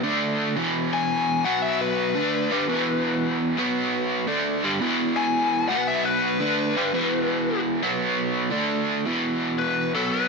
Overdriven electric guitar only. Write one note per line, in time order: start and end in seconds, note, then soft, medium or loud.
0.04 0.56 D3 medium
0.04 0.56 A3 medium
0.04 0.57 D4 medium
0.56 1.45 E2 medium
0.56 1.44 B2 loud
0.56 1.45 E3 loud
1.45 2.15 B2 medium
1.45 2.15 F#3 medium
1.45 2.16 B3 medium
2.16 2.51 D3 loud
2.16 2.51 A3 loud
2.16 2.51 D4 loud
2.52 2.68 G2 medium
2.52 2.69 D3 medium
2.52 2.69 G3 medium
2.68 3.57 E2 loud
2.68 3.56 B2 medium
2.68 3.57 E3 loud
3.57 4.27 B2 medium
3.57 4.27 F#3 medium
3.57 4.28 B3 loud
4.27 4.63 D3 loud
4.27 4.63 A3 loud
4.27 4.63 D4 loud
4.64 4.80 G2 medium
4.64 4.80 D3 loud
4.64 4.81 G3 loud
4.81 5.69 E2 loud
4.81 5.69 B2 loud
4.81 5.71 E3 loud
5.71 6.40 B2 medium
5.71 6.40 F#3 medium
5.71 6.41 B3 loud
6.40 6.75 D3 medium
6.40 6.76 A3 loud
6.40 6.76 D4 medium
6.76 6.93 G2 medium
6.76 6.93 D3 medium
6.76 6.93 G3 loud
6.94 7.82 E2 medium
6.94 7.81 B2 loud
6.94 7.82 E3 loud
7.83 8.51 B2 medium
7.83 8.52 F#3 medium
7.83 8.52 B3 medium
8.51 9.05 D3 loud
8.51 9.05 A3 loud
8.51 9.05 D4 loud
9.06 9.94 E2 medium
9.06 9.93 B2 medium
9.06 9.94 E3 medium
9.95 10.28 B2 medium
9.95 10.28 F#3 loud
9.95 10.28 B3 medium